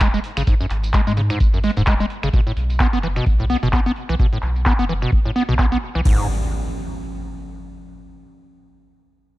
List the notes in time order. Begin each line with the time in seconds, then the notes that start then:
Already playing: D#1
0.00 G#3, finger snap, kick, clap, closed hi-hat, tambourine
0.14 G#3, tambourine
0.24 open hi-hat
0.37 G#1 C#3, finger snap, closed hi-hat, tambourine
0.47 G#2, kick, closed hi-hat, tambourine
0.61 F#2, tambourine
0.70 G#1, clap, open hi-hat
0.84 closed hi-hat, tambourine
0.94 G#3, kick, clap, closed hi-hat, tambourine
1.07 G#2 G#3, tambourine
1.17 C#3, open hi-hat
1.30 G#2, finger snap, closed hi-hat, tambourine
1.40 G#1, kick, closed hi-hat, tambourine
1.54 F#2, tambourine
1.64 G#3, open hi-hat
1.70 closed hi-hat
1.77 D#1 G#2, closed hi-hat, tambourine
1.87 G#3, finger snap, kick, clap, closed hi-hat, tambourine
2.00 G#3, tambourine
2.10 open hi-hat
2.23 G#1 C#3, finger snap, closed hi-hat, tambourine
2.33 B2, kick, closed hi-hat, tambourine
2.47 A2, tambourine
2.57 B1, open hi-hat
2.70 closed hi-hat, tambourine
2.80 B3, kick, clap, closed hi-hat, tambourine
2.93 F#1 B3, tambourine
3.03 E3, clap, open hi-hat
3.16 B2, finger snap, closed hi-hat, tambourine
3.26 B1, kick, closed hi-hat, tambourine
3.40 A2, tambourine
3.50 B3, open hi-hat
3.56 closed hi-hat
3.63 F#1 B2, closed hi-hat, tambourine
3.73 B3, finger snap, kick, clap, closed hi-hat, tambourine
3.86 B3, tambourine
3.96 open hi-hat
4.09 B1 E3, finger snap, closed hi-hat, tambourine
4.19 B2, kick, closed hi-hat, tambourine
4.33 A2, tambourine
4.42 B1, clap, open hi-hat
4.56 closed hi-hat, tambourine
4.66 B3, kick, clap, closed hi-hat, tambourine
4.79 F#1 B3, tambourine
4.89 E3, open hi-hat
5.02 B2, finger snap, closed hi-hat, tambourine
5.12 F#1, kick, closed hi-hat, tambourine
5.25 A2, tambourine
5.36 B3, open hi-hat
5.42 closed hi-hat
5.49 B1 B2, closed hi-hat, tambourine
5.59 B3, finger snap, kick, clap, closed hi-hat, tambourine
5.72 B3
5.82 open hi-hat
5.95 B1 E3, finger snap, tambourine
6.05 G#1 G#2, kick, crash, impact